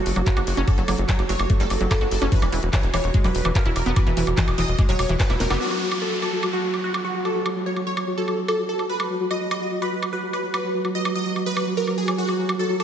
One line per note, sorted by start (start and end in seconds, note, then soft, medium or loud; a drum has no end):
0.00 5.60 F#3 medium
0.00 0.16 F#4 loud
0.00 5.60 F#4 medium
0.06 0.13 F#1 loud
0.06 open hi-hat loud
0.16 0.23 F#1 medium
0.16 0.21 F#3 medium
0.16 closed hi-hat soft
0.16 high woodblock soft
0.26 0.40 F#4 medium
0.26 kick loud
0.26 clap loud
0.26 closed hi-hat medium
0.37 0.44 F#1 medium
0.37 0.41 F#4 medium
0.37 closed hi-hat soft
0.37 high woodblock medium
0.47 0.54 F#1 loud
0.47 0.61 F#4 medium
0.47 open hi-hat loud
0.57 0.64 F#1 medium
0.57 0.60 C#4 loud
0.57 closed hi-hat soft
0.68 0.74 F#3 medium
0.68 0.95 A4 loud
0.68 kick loud
0.68 closed hi-hat medium
0.68 high woodblock soft
0.78 0.85 F#1 medium
0.78 0.82 F#3 medium
0.78 closed hi-hat soft
0.88 0.95 F#1 loud
0.88 0.92 F#3 medium
0.88 open hi-hat loud
0.88 high woodblock medium
0.98 1.05 F#1 medium
0.98 closed hi-hat soft
1.09 1.13 F#3 loud
1.09 1.22 C#5 medium
1.09 kick loud
1.09 clap loud
1.09 closed hi-hat medium
1.19 1.26 F#1 medium
1.19 closed hi-hat soft
1.19 high woodblock soft
1.29 1.36 F#1 loud
1.29 1.33 F#3 medium
1.29 1.50 C#5 loud
1.29 open hi-hat loud
1.39 1.46 F#1 medium
1.39 closed hi-hat soft
1.39 high woodblock medium
1.50 1.56 A3 medium
1.50 kick loud
1.50 closed hi-hat medium
1.60 1.67 F#1 medium
1.60 1.63 G3 medium
1.60 1.80 A4 medium
1.60 clap soft
1.60 closed hi-hat soft
1.70 1.77 F#1 loud
1.70 open hi-hat loud
1.70 high woodblock soft
1.81 1.87 F#1 medium
1.81 1.85 F#3 medium
1.81 closed hi-hat soft
1.91 2.04 A4 medium
1.91 kick loud
1.91 clap loud
1.91 closed hi-hat medium
1.91 high woodblock medium
2.01 2.08 F#1 medium
2.01 2.05 F#4 medium
2.01 closed hi-hat soft
2.11 2.18 F#1 loud
2.11 2.25 A4 medium
2.11 open hi-hat loud
2.22 2.29 F#1 medium
2.22 2.24 C#4 loud
2.22 closed hi-hat soft
2.22 high woodblock soft
2.32 2.38 E3 medium
2.32 2.59 B4 loud
2.32 kick loud
2.32 closed hi-hat medium
2.42 2.49 E1 medium
2.42 2.47 E3 medium
2.42 closed hi-hat soft
2.42 high woodblock medium
2.52 2.59 E1 loud
2.52 2.57 E3 medium
2.52 open hi-hat loud
2.63 2.70 E1 medium
2.63 closed hi-hat soft
2.73 2.77 E3 loud
2.73 2.87 C#5 medium
2.73 kick loud
2.73 clap loud
2.73 closed hi-hat medium
2.73 high woodblock soft
2.83 2.90 E1 medium
2.83 closed hi-hat soft
2.94 3.00 E1 loud
2.94 2.98 E3 medium
2.94 3.14 C#5 loud
2.94 open hi-hat loud
2.94 high woodblock medium
3.04 3.11 E1 loud
3.04 closed hi-hat soft
3.14 3.21 G#3 medium
3.14 kick loud
3.14 closed hi-hat medium
3.24 3.31 E1 medium
3.24 3.27 F#3 medium
3.24 3.45 B4 loud
3.24 clap soft
3.24 closed hi-hat soft
3.24 high woodblock soft
3.35 3.42 E1 loud
3.35 open hi-hat loud
3.45 3.52 E1 medium
3.45 3.49 E3 medium
3.45 closed hi-hat soft
3.45 high woodblock medium
3.55 3.69 A#4 medium
3.55 kick loud
3.55 clap loud
3.55 closed hi-hat medium
3.66 3.72 E1 medium
3.66 3.70 E4 medium
3.66 closed hi-hat soft
3.76 3.83 E1 loud
3.76 3.89 A#4 medium
3.76 open hi-hat loud
3.76 high woodblock soft
3.86 3.93 E1 medium
3.86 3.89 B3 loud
3.86 closed hi-hat soft
3.96 4.03 E3 medium
3.96 4.23 B4 loud
3.96 kick loud
3.96 closed hi-hat medium
3.96 high woodblock medium
4.07 4.13 E1 medium
4.07 4.11 E3 medium
4.07 closed hi-hat soft
4.17 4.24 E1 loud
4.17 4.21 E3 medium
4.17 open hi-hat loud
4.27 4.34 E1 medium
4.27 closed hi-hat soft
4.27 high woodblock soft
4.37 4.42 E3 loud
4.37 4.51 D#5 medium
4.37 kick loud
4.37 clap loud
4.37 closed hi-hat medium
4.48 4.55 E1 medium
4.48 closed hi-hat soft
4.48 high woodblock medium
4.58 4.65 E1 loud
4.58 4.62 E3 medium
4.58 4.78 D#5 loud
4.58 open hi-hat loud
4.68 4.75 E1 medium
4.68 closed hi-hat soft
4.79 4.85 G#3 medium
4.79 kick loud
4.79 closed hi-hat medium
4.79 high woodblock soft
4.89 4.96 E1 medium
4.89 4.91 F#3 medium
4.89 5.09 C#5 medium
4.89 clap soft
4.89 closed hi-hat soft
4.99 5.06 E1 loud
4.99 open hi-hat loud
4.99 high woodblock medium
5.09 5.16 E1 medium
5.09 5.14 E3 medium
5.09 closed hi-hat soft
5.20 5.33 B4 medium
5.20 kick loud
5.20 clap loud
5.20 closed hi-hat medium
5.30 5.37 E1 medium
5.30 5.34 E4 medium
5.30 snare medium
5.30 closed hi-hat soft
5.30 high woodblock soft
5.40 5.47 E1 loud
5.40 5.54 A#4 medium
5.40 snare medium
5.40 open hi-hat loud
5.50 5.57 F#1 loud
5.50 5.53 B3 loud
5.50 snare medium
5.50 closed hi-hat soft
5.50 high woodblock medium
5.61 12.84 F#3 medium
5.61 5.88 F#4 loud
5.61 12.84 F#4 medium
5.61 downlifter medium
5.71 high woodblock soft
5.92 high woodblock medium
6.02 6.15 A4 medium
6.22 6.43 A4 loud
6.22 high woodblock soft
6.43 high woodblock medium
6.53 6.74 F#4 loud
6.74 high woodblock soft
6.84 6.98 F#4 medium
6.94 high woodblock medium
7.05 7.18 F#4 medium
7.25 7.52 A4 loud
7.25 high woodblock soft
7.46 high woodblock medium
7.66 7.80 C#5 medium
7.76 high woodblock soft
7.87 8.07 C#5 medium
7.97 high woodblock medium
8.18 8.38 A4 medium
8.28 high woodblock soft
8.48 8.62 A4 medium
8.48 high woodblock medium
8.69 8.83 A4 medium
8.79 high woodblock soft
8.90 9.17 B4 loud
9.00 high woodblock medium
9.31 9.44 D#5 medium
9.31 high woodblock soft
9.51 9.71 D#5 loud
9.51 high woodblock medium
9.82 10.02 B4 loud
9.82 high woodblock soft
10.03 high woodblock medium
10.13 10.26 B4 medium
10.33 10.47 B4 medium
10.33 high woodblock soft
10.54 10.81 B4 loud
10.54 high woodblock medium
10.85 high woodblock soft
10.95 11.09 D#5 medium
11.05 high woodblock medium
11.16 11.36 D#5 loud
11.36 high woodblock soft
11.46 11.67 B4 loud
11.57 high woodblock medium
11.77 11.91 A#4 medium
11.87 high woodblock soft
11.98 12.11 G#4 medium
12.08 high woodblock medium
12.18 12.45 F#4 loud
12.29 high woodblock soft
12.49 high woodblock medium
12.59 12.73 A4 medium
12.80 12.84 A4 loud
12.80 high woodblock soft